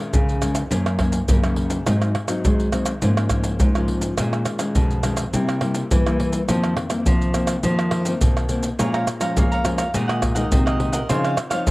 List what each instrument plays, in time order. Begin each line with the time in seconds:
Already playing: nylon-string guitar A#2 D#3
0.00 nylon-string guitar G#3 C#4
0.13 nylon-string guitar F2 C#3, pandeiro, maracas, surdo
0.29 pandeiro, maracas
0.42 nylon-string guitar D#3 G#3 C#4, pandeiro, tamborim, maracas
0.55 pandeiro, tamborim, maracas
0.71 nylon-string guitar F#2 D#3 A#3 C#4, pandeiro, maracas, surdo
0.86 pandeiro, tamborim, maracas
0.99 nylon-string guitar D#3 A#3 C#4, pandeiro, tamborim, surdo
1.12 pandeiro, maracas
1.28 nylon-string guitar F#2 C#3 D#3 A#3 C#4, pandeiro, maracas, surdo
1.44 nylon-string guitar D#3 A#3 C#4, pandeiro, tamborim, maracas
1.56 pandeiro
1.70 pandeiro, maracas
1.86 nylon-string guitar G#2 F#3 C4 D#4, pandeiro, tamborim, maracas, surdo
2.02 pandeiro, tamborim, maracas
2.15 pandeiro, tamborim
2.28 nylon-string guitar F#3 C4 D#4, pandeiro, tamborim, maracas
2.45 nylon-string guitar D#3 G#3, pandeiro, maracas, surdo
2.60 pandeiro, maracas
2.72 nylon-string guitar F#3 C4 D#4, pandeiro, tamborim, maracas
2.85 pandeiro, tamborim, maracas
3.02 nylon-string guitar G#2 F3 A#3 C#4, pandeiro, maracas, surdo
3.17 pandeiro, tamborim, maracas
3.29 nylon-string guitar F3 A#3 C#4, pandeiro, tamborim, maracas, surdo
3.44 pandeiro, maracas
3.60 nylon-string guitar G#2, pandeiro, maracas, surdo
3.75 nylon-string guitar F3 A#3 C#4, pandeiro, tamborim, maracas
3.88 pandeiro
4.01 pandeiro, maracas
4.18 nylon-string guitar A#2 D#3 G#3 C#4, pandeiro, tamborim, maracas, surdo
4.33 pandeiro, tamborim, maracas
4.45 pandeiro, tamborim, maracas
4.59 nylon-string guitar D#3 G#3 C#4, pandeiro, tamborim, maracas
4.75 nylon-string guitar F2 B2, pandeiro, maracas, surdo
4.90 pandeiro, maracas
5.03 nylon-string guitar D#3 G#3 C#4, pandeiro, tamborim, maracas
5.17 pandeiro, tamborim, maracas
5.33 nylon-string guitar C3 G3 A#3 E4, pandeiro, maracas, surdo
5.49 pandeiro, tamborim, maracas
5.61 nylon-string guitar G3 A#3 E4, pandeiro, tamborim
5.75 pandeiro, maracas
5.91 nylon-string guitar G2 E3 G3 A#3 E4, pandeiro, maracas, surdo
6.06 nylon-string guitar G3 A#3 E4, pandeiro, tamborim, maracas
6.20 pandeiro
6.33 pandeiro, maracas
6.49 nylon-string guitar F2 D#3 F3 A#3 C4, pandeiro, tamborim, maracas, surdo
6.64 pandeiro, tamborim, maracas
6.77 pandeiro, tamborim
6.90 nylon-string guitar D#3 A#3 C4, pandeiro, tamborim, maracas
7.06 nylon-string guitar C3 F3, pandeiro, maracas, surdo
7.22 pandeiro, maracas
7.34 nylon-string guitar D#3 A#3 C4, pandeiro, tamborim, maracas
7.47 pandeiro, tamborim, maracas
7.63 nylon-string guitar F2 D#3 F3 A#3 C4, pandeiro, maracas, surdo
7.79 pandeiro, tamborim, maracas
7.91 pandeiro, tamborim
8.05 nylon-string guitar D#3 A#3 C4, pandeiro, maracas
8.21 nylon-string guitar B2, pandeiro, maracas, surdo
8.37 pandeiro, tamborim, maracas
8.49 nylon-string guitar D#3 A#3 C4, pandeiro, maracas
8.63 pandeiro, maracas
8.78 nylon-string guitar A#2 F3 G#3 C#4, cavaquinho G#4 C#5 F5 A#5, pandeiro, tamborim, maracas, surdo
8.94 cavaquinho C#5 F5 A#5, pandeiro, tamborim, maracas
9.07 muted cavaquinho stroke, pandeiro, tamborim, maracas
9.20 nylon-string guitar F3 G#3 C#4, cavaquinho C#5 F5 A#5, pandeiro, tamborim, maracas
9.36 nylon-string guitar F2 A#3, cavaquinho G#4 C#5 F5 A#5, pandeiro, maracas, surdo
9.52 cavaquinho C#5 F5 A#5, pandeiro, maracas
9.65 nylon-string guitar F3 G#3 C#4, pandeiro, tamborim, maracas
9.78 cavaquinho C#5 F5 A#5, pandeiro, tamborim, maracas
9.94 nylon-string guitar A#2 D#3 G#3 D#4, cavaquinho F#4 A#4 D#5 F#5, pandeiro, maracas, surdo
10.08 cavaquinho A#4 D#5 F#5, pandeiro, tamborim, maracas
10.22 muted cavaquinho stroke, pandeiro, tamborim, maracas, surdo
10.35 nylon-string guitar D#3 G#3 D#4, cavaquinho A#4 D#5 F#5, pandeiro, maracas
10.52 nylon-string guitar A#2 C3, pandeiro, maracas, surdo
10.66 cavaquinho A#4 D#5 F#5, pandeiro, tamborim, maracas
10.80 nylon-string guitar D#3 G#3 D#4, pandeiro
10.92 cavaquinho A#4 D#5 F#5, pandeiro, maracas
11.09 nylon-string guitar C#3 F3 C4 D#4, cavaquinho F4 C5 C#5 F5, pandeiro, tamborim, maracas, surdo
11.24 cavaquinho C5 C#5 F5, pandeiro, tamborim, maracas
11.37 muted cavaquinho stroke, pandeiro, tamborim, maracas
11.50 nylon-string guitar F3 C4 D#4, cavaquinho C5 C#5 F5, pandeiro, tamborim, maracas
11.67 nylon-string guitar A#2, cavaquinho F4 C5, pandeiro, maracas, surdo